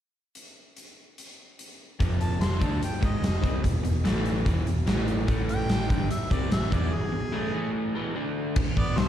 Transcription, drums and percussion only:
0.35 closed hi-hat
0.77 closed hi-hat
1.18 closed hi-hat
1.59 closed hi-hat
2.00 kick, closed hi-hat
2.21 closed hi-hat
2.41 snare, closed hi-hat
2.61 kick, closed hi-hat
2.83 closed hi-hat
3.03 kick, closed hi-hat
3.24 snare, closed hi-hat
3.44 kick, closed hi-hat
3.64 kick, closed hi-hat
3.85 closed hi-hat
4.05 snare, closed hi-hat
4.26 closed hi-hat
4.46 kick, closed hi-hat
4.67 closed hi-hat
4.87 snare, closed hi-hat
5.08 closed hi-hat
5.28 kick, closed hi-hat
5.49 closed hi-hat
5.69 snare, closed hi-hat
5.90 kick, closed hi-hat
6.11 closed hi-hat
6.31 kick, closed hi-hat
6.52 snare, closed hi-hat
6.72 kick, closed hi-hat
8.56 kick, crash
8.77 kick
8.97 snare, open hi-hat

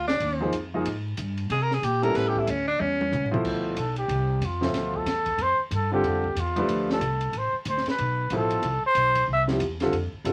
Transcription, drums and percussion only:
0.08 snare
0.20 ride
0.53 hi-hat pedal, ride
0.85 ride
1.17 hi-hat pedal, ride
1.37 ride
1.50 ride
1.71 snare
1.83 hi-hat pedal, ride
2.03 ride
2.15 snare, ride
2.35 kick
2.47 hi-hat pedal, ride
2.80 high tom
3.01 high tom
3.13 floor tom, hi-hat pedal
3.34 floor tom
3.45 kick, crash
3.76 hi-hat pedal, ride
3.96 ride
4.09 ride
4.42 hi-hat pedal, ride
4.62 snare
4.74 snare, ride
4.94 kick
5.06 snare, hi-hat pedal, ride
5.26 kick, ride
5.38 ride
5.71 hi-hat pedal, ride
6.04 ride
6.24 kick
6.36 hi-hat pedal, ride
6.56 ride
6.69 ride
6.90 snare
7.01 hi-hat pedal, ride
7.21 ride
7.33 ride
7.65 hi-hat pedal, ride
7.77 snare
7.86 snare, ride
7.98 ride
8.30 hi-hat pedal, ride
8.51 ride
8.63 ride
8.95 hi-hat pedal, ride
9.15 kick, ride
9.48 snare
9.60 hi-hat pedal, ride
9.80 snare, ride
9.93 ride
10.25 hi-hat pedal, ride

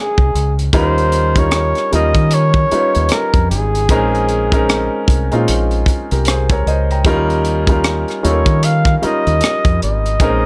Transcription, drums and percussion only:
0.18 kick
0.36 closed hi-hat
0.59 closed hi-hat
0.73 kick, closed hi-hat
0.98 closed hi-hat
1.12 closed hi-hat
1.36 kick, closed hi-hat
1.51 cross-stick, closed hi-hat
1.75 cross-stick, closed hi-hat
1.93 closed hi-hat
2.15 kick, closed hi-hat
2.31 closed hi-hat
2.54 kick
2.71 closed hi-hat
2.95 closed hi-hat
3.09 cross-stick, closed hi-hat
3.34 kick, closed hi-hat
3.51 closed hi-hat
3.75 closed hi-hat
3.89 kick, closed hi-hat
4.15 closed hi-hat
4.29 closed hi-hat
4.52 kick, closed hi-hat
4.69 cross-stick, closed hi-hat
5.08 kick, closed hi-hat
5.32 closed hi-hat
5.48 closed hi-hat
5.71 closed hi-hat
5.86 kick, closed hi-hat
6.11 closed hi-hat
6.25 cross-stick, closed hi-hat
6.50 kick, closed hi-hat
6.67 closed hi-hat
6.91 closed hi-hat
7.05 kick, closed hi-hat
7.30 closed hi-hat
7.45 closed hi-hat
7.67 kick, closed hi-hat
7.84 cross-stick, closed hi-hat
8.08 cross-stick, closed hi-hat
8.25 closed hi-hat
8.46 kick, closed hi-hat
8.63 closed hi-hat
8.85 kick, cross-stick
9.03 closed hi-hat
9.27 closed hi-hat
9.41 cross-stick, closed hi-hat
9.65 kick, closed hi-hat
9.82 closed hi-hat
10.06 closed hi-hat
10.20 kick, closed hi-hat

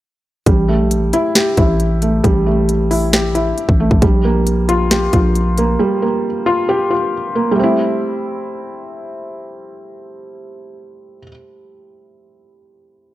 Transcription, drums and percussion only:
0.46 kick, closed hi-hat
0.91 closed hi-hat
1.13 closed hi-hat
1.35 snare, closed hi-hat
1.57 kick, closed hi-hat
1.80 closed hi-hat
2.02 closed hi-hat
2.24 kick, closed hi-hat
2.69 closed hi-hat
2.91 open hi-hat
3.13 snare, closed hi-hat
3.35 closed hi-hat
3.58 closed hi-hat
3.69 kick
3.91 kick
4.02 kick, closed hi-hat
4.47 closed hi-hat
4.69 closed hi-hat
4.91 snare, closed hi-hat
5.13 kick, closed hi-hat
5.35 closed hi-hat
5.58 closed hi-hat

